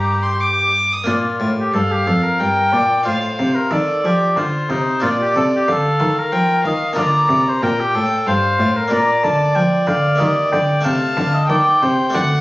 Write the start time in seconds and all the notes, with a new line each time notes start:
Already playing: G2 A#3 D4 G4 A#5
0.23 C6
0.40 D6
0.92 D#6
1.04 A#2 A#3 D4 F4
1.40 A2
1.59 G4
1.74 G2 A4 F5
1.92 G4
2.07 F2 A4
2.23 A#4
2.40 G2 G5
2.73 A#2 D5
3.03 A2 D#4 F4 C5 F5
3.39 C3
3.55 A#4
3.71 D#3 A4 D5
4.04 F3 G4
4.37 D3 F4 C5
4.70 C3 D#4
5.00 A#2 D4 F4 D5
5.21 G4
5.36 C3 A4
5.56 G4
5.68 D3 A4 F5
6.00 D#3
6.19 A#4
6.32 F3 G5
6.64 D#3 D#5 F5
6.93 D3 A#3 D4 F4 A#5
6.97 D3 D5
7.29 C3
7.48 C5
7.62 A#2 A#4 G5
7.80 G4
7.95 A2 A4
8.26 G2 C5 F5
8.59 A2
8.77 A#4
8.88 A#2 A#3 D4 F4
8.92 A#2 D5 A#5
9.23 D3 A5
9.55 F3 G5
9.87 D3 F5
10.15 A#3 D#4 G4 D#5
10.20 D#3
10.52 D3 G5
10.81 A3 D#4 A4 F5 A5
10.85 C3
11.17 D3
11.34 D#5
11.49 D#3 D5 G5
11.82 C3 C5
12.10 A3 D4 F#4
12.14 D3 F#5